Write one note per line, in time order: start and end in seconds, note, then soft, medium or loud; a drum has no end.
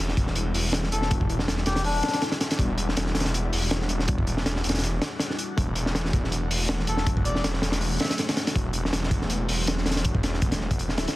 0.00 0.15 E1 loud
0.00 5.53 G3 medium
0.00 8.52 D4 medium
0.00 5.53 E4 medium
0.00 11.16 F#4 medium
0.09 snare medium
0.17 0.53 E1 medium
0.17 kick loud
0.17 closed hi-hat medium
0.27 snare soft
0.35 closed hi-hat medium
0.54 0.90 E1 medium
0.54 open hi-hat medium
0.73 snare loud
0.73 closed hi-hat loud
0.83 snare soft
0.92 1.46 E1 medium
0.92 1.14 A4 loud
0.92 closed hi-hat medium
1.02 snare soft
1.10 1.21 G3 medium
1.10 1.21 B3 medium
1.10 1.21 D4 medium
1.10 1.21 F#4 medium
1.10 kick loud
1.10 closed hi-hat medium
1.21 kick loud
1.29 closed hi-hat medium
1.39 snare medium
1.47 1.64 E1 medium
1.47 snare loud
1.47 closed hi-hat medium
1.57 snare medium
1.66 2.02 E1 medium
1.66 1.83 G4 loud
1.66 snare loud
1.66 closed hi-hat medium
1.76 snare loud
1.76 closed hi-hat medium
1.84 2.22 D4 loud
1.84 open hi-hat medium
2.03 snare loud
2.03 closed hi-hat medium
2.08 snare loud
2.08 closed hi-hat medium
2.13 snare loud
2.13 closed hi-hat medium
2.22 snare loud
2.22 closed hi-hat medium
2.32 snare loud
2.32 closed hi-hat medium
2.41 snare loud
2.41 closed hi-hat medium
2.50 snare loud
2.50 closed hi-hat medium
2.59 2.95 E1 loud
2.59 2.70 G3 medium
2.59 2.70 B3 medium
2.59 2.70 D4 medium
2.59 2.70 F#4 medium
2.59 kick loud
2.59 closed hi-hat medium
2.78 closed hi-hat medium
2.89 snare medium
2.97 3.13 E1 loud
2.97 snare loud
2.97 closed hi-hat loud
3.06 snare medium
3.15 3.51 E1 medium
3.15 snare medium
3.15 closed hi-hat medium
3.20 snare medium
3.20 closed hi-hat medium
3.25 snare loud
3.25 closed hi-hat medium
3.34 closed hi-hat medium
3.52 3.88 E1 medium
3.52 open hi-hat medium
3.71 snare loud
3.71 closed hi-hat medium
3.82 snare soft
3.89 4.44 E1 loud
3.89 closed hi-hat medium
3.99 snare soft
4.08 4.19 G3 medium
4.08 4.19 B3 medium
4.08 4.19 D4 medium
4.08 4.19 F#4 medium
4.08 kick loud
4.08 closed hi-hat medium
4.18 kick loud
4.27 closed hi-hat medium
4.37 snare soft
4.45 4.62 E1 medium
4.45 snare loud
4.45 closed hi-hat medium
4.56 snare medium
4.64 5.00 E1 medium
4.64 closed hi-hat medium
4.69 snare medium
4.69 closed hi-hat medium
4.74 snare loud
4.74 closed hi-hat medium
4.78 snare medium
4.78 closed hi-hat medium
4.83 closed hi-hat medium
5.02 snare loud
5.02 closed hi-hat medium
5.19 snare loud
5.19 closed hi-hat medium
5.30 snare soft
5.39 closed hi-hat medium
5.57 5.93 E1 loud
5.57 5.68 F#3 medium
5.57 11.16 F#3 medium
5.57 5.68 A3 medium
5.57 11.16 A3 medium
5.57 5.68 D4 medium
5.57 5.68 F#4 medium
5.57 kick loud
5.57 closed hi-hat medium
5.75 closed hi-hat medium
5.86 snare soft
5.94 6.12 E1 medium
5.94 snare loud
5.94 closed hi-hat medium
6.05 snare medium
6.13 6.49 E1 medium
6.13 kick loud
6.13 closed hi-hat medium
6.24 snare soft
6.32 closed hi-hat medium
6.50 6.86 E1 medium
6.50 open hi-hat medium
6.69 snare loud
6.69 closed hi-hat medium
6.80 snare soft
6.87 7.42 E1 medium
6.87 7.11 A4 medium
6.87 closed hi-hat medium
6.97 snare soft
7.06 7.17 F#3 medium
7.06 7.17 A3 medium
7.06 7.17 D4 medium
7.06 7.17 F#4 medium
7.06 kick loud
7.06 closed hi-hat loud
7.17 kick loud
7.25 7.48 D5 medium
7.25 closed hi-hat medium
7.36 snare medium
7.43 7.61 E1 loud
7.43 snare loud
7.43 closed hi-hat medium
7.54 snare medium
7.62 7.98 E1 medium
7.62 snare loud
7.62 closed hi-hat medium
7.72 snare loud
7.72 closed hi-hat medium
7.81 open hi-hat medium
8.00 8.06 E5 medium
8.00 snare medium
8.00 closed hi-hat medium
8.04 snare loud
8.04 closed hi-hat medium
8.10 8.15 E5 medium
8.10 snare loud
8.10 closed hi-hat medium
8.18 snare loud
8.18 closed hi-hat medium
8.29 snare loud
8.29 closed hi-hat medium
8.37 snare loud
8.37 closed hi-hat medium
8.47 snare loud
8.47 closed hi-hat medium
8.55 8.91 E1 loud
8.55 8.66 F#3 medium
8.55 8.66 A3 medium
8.55 11.16 C4 medium
8.55 8.66 D4 medium
8.55 8.66 F#4 medium
8.55 kick loud
8.55 closed hi-hat medium
8.73 closed hi-hat medium
8.85 snare soft
8.93 9.10 E1 loud
8.93 snare loud
8.93 closed hi-hat loud
9.03 snare medium
9.11 9.47 E1 medium
9.11 kick medium
9.11 closed hi-hat medium
9.21 snare soft
9.30 closed hi-hat medium
9.49 9.85 E1 medium
9.49 open hi-hat medium
9.67 snare loud
9.67 closed hi-hat loud
9.78 snare soft
9.86 10.41 E1 loud
9.86 snare medium
9.86 closed hi-hat medium
9.91 snare loud
9.91 closed hi-hat medium
9.96 snare loud
9.96 closed hi-hat medium
10.04 10.15 F#3 medium
10.04 10.15 A3 medium
10.04 10.15 D4 medium
10.04 10.15 F#4 medium
10.04 kick loud
10.04 closed hi-hat medium
10.15 kick loud
10.23 snare loud
10.23 closed hi-hat medium
10.34 snare soft
10.42 10.59 E1 medium
10.42 kick medium
10.42 closed hi-hat medium
10.52 snare loud
10.52 closed hi-hat medium
10.61 10.79 E1 medium
10.61 snare soft
10.71 kick medium
10.71 closed hi-hat medium
10.79 10.99 E1 loud
10.79 closed hi-hat medium
10.79 swell medium
10.89 snare soft
10.98 11.07 D1 medium
10.98 snare loud
10.98 closed hi-hat medium
11.08 snare loud
11.08 closed hi-hat medium